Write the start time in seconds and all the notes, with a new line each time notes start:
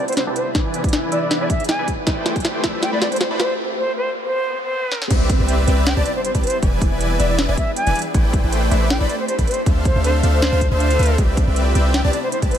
Already playing: C3 G3 B3 E4, riser
0.08 C5, closed hi-hat
0.13 closed hi-hat
0.17 C5, snare, closed hi-hat
0.27 C2 C4 G4 B4 D5 A5
0.36 C5, closed hi-hat
0.55 E3 D4 E4 G#4 B4 D5 G#5, kick, snare, closed hi-hat
0.74 closed hi-hat
0.84 E3 E4 B4 D5 G#5, kick, closed hi-hat
0.89 closed hi-hat
0.93 snare, closed hi-hat
1.12 E1 E3 E4 B4 D5 E5, closed hi-hat
1.22 D5
1.31 snare, closed hi-hat
1.41 E1 E3 E4 B4 D5 G#5
1.50 E5, kick, closed hi-hat
1.60 closed hi-hat
1.64 closed hi-hat
1.69 G#5, snare, closed hi-hat
1.79 E1 E3 E4 B4 D5 G#5
1.88 A3 C4 G4, kick, closed hi-hat
2.07 A3 E4 B4 C5 D5 G5, kick, snare, closed hi-hat
2.26 snare, closed hi-hat
2.36 A1 A3 E4 B4 C5 D5 G5, kick, closed hi-hat
2.40 closed hi-hat
2.45 snare, closed hi-hat
2.64 A3 E4 B4 C5 D5 E5, kick, snare, closed hi-hat
2.83 G5, snare, closed hi-hat
2.93 A1 A3 E4 B4 C5 D5 B5
3.02 D5, snare, closed hi-hat
3.12 C5, closed hi-hat
3.16 closed hi-hat
3.21 C5, snare, closed hi-hat
3.31 A1 A3 E4 B4 C5 D5 B5
3.40 C5, snare, closed hi-hat
3.78 C5
3.97 C5
4.26 C5
4.35 swell
4.64 C5
4.92 snare
5.02 snare
5.10 C2 C3 G3 B3 C4 E4 G4 B4 D5 E5, kick, closed hi-hat, crash, impact
5.29 kick, closed hi-hat
5.40 C2 C4 G4 B4 D5 E5
5.49 closed hi-hat
5.68 C2 C4 G4 B4 D5 E5, closed hi-hat
5.87 G5, snare, closed hi-hat
5.97 C2 C4 G4 B4 D5 A5
6.06 D5, closed hi-hat
6.16 C5
6.25 C5, closed hi-hat
6.35 C2 C4 G4 B4 D5 A5, kick, closed hi-hat
6.43 C5, closed hi-hat
6.47 closed hi-hat
6.50 closed hi-hat
6.62 E1 E3 D4 E4 G#4 B4 D5 G#5, kick, closed hi-hat
6.82 kick, closed hi-hat
6.92 E1 E3 E4 B4 D5 G#5
7.01 closed hi-hat
7.19 E1 E3 E4 B4 D5 E5, closed hi-hat
7.30 D5
7.39 snare, closed hi-hat
7.49 E1 E3 E4 B4 D5 G#5
7.57 E5, kick, closed hi-hat
7.76 G#5, closed hi-hat
7.87 E1 E3 E4 B4 D5 G#5, closed hi-hat
7.95 A3 C4 G4, closed hi-hat
7.99 closed hi-hat
8.02 closed hi-hat
8.14 A1 A3 E4 B4 C5 D5 G5, kick, closed hi-hat
8.33 kick, closed hi-hat
8.43 A1 A3 E4 B4 C5 D5 G5
8.53 closed hi-hat
8.71 A1 A3 E4 B4 C5 D5 E5, closed hi-hat
8.90 G5, snare, closed hi-hat
9.00 A1 A3 E4 B4 C5 D5 B5
9.09 D5, closed hi-hat
9.20 C5
9.28 C5, closed hi-hat
9.38 A1 A3 E4 B4 C5 D5 B5, kick, closed hi-hat
9.47 C5, closed hi-hat
9.51 closed hi-hat
9.54 closed hi-hat
9.66 D2 D3 A3 D4 F4 A4 C5 E5 F5, kick, closed hi-hat
9.85 C5, kick, closed hi-hat
9.95 D2 D4 A4 C5 E5 F5
10.04 C5, closed hi-hat
10.23 D2 D4 A4 C5 E5 F5, closed hi-hat
10.33 C5
10.42 snare, closed hi-hat
10.52 D2 D4 A4 C5 E5 F5
10.61 kick, closed hi-hat
10.71 D2 D4 A4 C5 E5 F5
10.80 closed hi-hat
10.90 closed hi-hat
10.99 D2 D4 A4 C5 E5 F5, closed hi-hat
11.03 closed hi-hat
11.06 closed hi-hat
11.18 C2 C3 G3 B3 C4 E4 G4 B4 D5 E5, kick, closed hi-hat
11.37 kick, closed hi-hat
11.47 C2 C4 G4 B4 D5 E5
11.56 closed hi-hat
11.75 C2 C4 G4 B4 D5 E5, closed hi-hat
11.94 G5, snare, closed hi-hat
12.04 C2 C4 G4 B4 D5 A5
12.13 D5, closed hi-hat
12.23 C5
12.32 C5, closed hi-hat
12.42 C2 C4 G4 B4 D5 A5, kick, closed hi-hat
12.51 C5, closed hi-hat
12.55 closed hi-hat